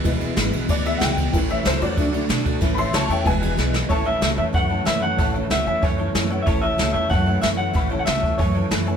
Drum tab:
RD |xxxxxxxx|xxxxxxxx|xxxxxx--|--------|
HH |--------|--------|--------|o-o-o---|
SD |--o---o-|--o---o-|--o---oo|--o---o-|
BD |o---o--o|o---o--o|o---o---|o---o---|

RD |--------|--------|--------|
HH |o-o-o-o-|o-o-o-o-|o-o-o-o-|
SD |--o---o-|--o---o-|--o---o-|
BD |o---o---|o---o---|o--oo---|